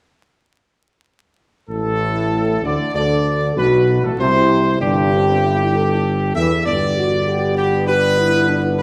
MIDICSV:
0, 0, Header, 1, 5, 480
1, 0, Start_track
1, 0, Tempo, 628272
1, 1293, Time_signature, 4, 2, 24, 8
1, 3683, Tempo, 612870
1, 6818, End_track
2, 0, Start_track
2, 0, Title_t, "Trumpet section"
2, 0, Program_c, 0, 61
2, 1298, Note_on_c, 0, 69, 83
2, 1985, Note_off_c, 0, 69, 0
2, 2023, Note_on_c, 0, 74, 82
2, 2239, Note_off_c, 0, 74, 0
2, 2249, Note_on_c, 0, 74, 89
2, 2694, Note_off_c, 0, 74, 0
2, 2731, Note_on_c, 0, 71, 77
2, 3062, Note_off_c, 0, 71, 0
2, 3088, Note_on_c, 0, 69, 64
2, 3206, Note_off_c, 0, 69, 0
2, 3206, Note_on_c, 0, 72, 85
2, 3651, Note_off_c, 0, 72, 0
2, 3672, Note_on_c, 0, 67, 88
2, 4852, Note_off_c, 0, 67, 0
2, 4887, Note_on_c, 0, 76, 87
2, 5110, Note_off_c, 0, 76, 0
2, 5122, Note_on_c, 0, 74, 98
2, 5810, Note_off_c, 0, 74, 0
2, 5838, Note_on_c, 0, 67, 85
2, 6063, Note_off_c, 0, 67, 0
2, 6076, Note_on_c, 0, 71, 110
2, 6657, Note_off_c, 0, 71, 0
2, 6790, Note_on_c, 0, 71, 89
2, 6818, Note_off_c, 0, 71, 0
2, 6818, End_track
3, 0, Start_track
3, 0, Title_t, "French horn section"
3, 0, Program_c, 1, 60
3, 2246, Note_on_c, 1, 69, 62
3, 2693, Note_off_c, 1, 69, 0
3, 2719, Note_on_c, 1, 66, 65
3, 3170, Note_off_c, 1, 66, 0
3, 3195, Note_on_c, 1, 64, 64
3, 3674, Note_on_c, 1, 62, 65
3, 3676, Note_off_c, 1, 64, 0
3, 3903, Note_off_c, 1, 62, 0
3, 3932, Note_on_c, 1, 60, 59
3, 4153, Note_off_c, 1, 60, 0
3, 4170, Note_on_c, 1, 64, 61
3, 4392, Note_off_c, 1, 64, 0
3, 4411, Note_on_c, 1, 69, 74
3, 5098, Note_off_c, 1, 69, 0
3, 5140, Note_on_c, 1, 67, 60
3, 5371, Note_on_c, 1, 66, 65
3, 5372, Note_off_c, 1, 67, 0
3, 5590, Note_off_c, 1, 66, 0
3, 5606, Note_on_c, 1, 67, 80
3, 6053, Note_off_c, 1, 67, 0
3, 6077, Note_on_c, 1, 62, 68
3, 6313, Note_on_c, 1, 64, 66
3, 6319, Note_off_c, 1, 62, 0
3, 6547, Note_on_c, 1, 62, 68
3, 6556, Note_off_c, 1, 64, 0
3, 6818, Note_off_c, 1, 62, 0
3, 6818, End_track
4, 0, Start_track
4, 0, Title_t, "Trombone section"
4, 0, Program_c, 2, 61
4, 1290, Note_on_c, 2, 45, 83
4, 1981, Note_off_c, 2, 45, 0
4, 2006, Note_on_c, 2, 50, 77
4, 2230, Note_off_c, 2, 50, 0
4, 2260, Note_on_c, 2, 50, 66
4, 2700, Note_off_c, 2, 50, 0
4, 2737, Note_on_c, 2, 47, 74
4, 3065, Note_off_c, 2, 47, 0
4, 3092, Note_on_c, 2, 45, 52
4, 3145, Note_off_c, 2, 45, 0
4, 3204, Note_on_c, 2, 48, 80
4, 3650, Note_off_c, 2, 48, 0
4, 3683, Note_on_c, 2, 43, 78
4, 4857, Note_off_c, 2, 43, 0
4, 4892, Note_on_c, 2, 52, 81
4, 4999, Note_off_c, 2, 52, 0
4, 5128, Note_on_c, 2, 50, 76
4, 5132, Note_on_c, 2, 59, 78
4, 6818, Note_off_c, 2, 50, 0
4, 6818, Note_off_c, 2, 59, 0
4, 6818, End_track
5, 0, Start_track
5, 0, Title_t, "Tuba"
5, 0, Program_c, 3, 58
5, 1289, Note_on_c, 3, 33, 64
5, 1981, Note_off_c, 3, 33, 0
5, 2002, Note_on_c, 3, 38, 71
5, 2111, Note_off_c, 3, 38, 0
5, 2248, Note_on_c, 3, 38, 73
5, 2694, Note_off_c, 3, 38, 0
5, 2721, Note_on_c, 3, 35, 72
5, 3057, Note_off_c, 3, 35, 0
5, 3076, Note_on_c, 3, 33, 53
5, 3132, Note_off_c, 3, 33, 0
5, 3199, Note_on_c, 3, 36, 74
5, 3648, Note_off_c, 3, 36, 0
5, 3670, Note_on_c, 3, 31, 76
5, 4850, Note_off_c, 3, 31, 0
5, 4884, Note_on_c, 3, 40, 71
5, 5108, Note_off_c, 3, 40, 0
5, 5126, Note_on_c, 3, 31, 68
5, 6818, Note_off_c, 3, 31, 0
5, 6818, End_track
0, 0, End_of_file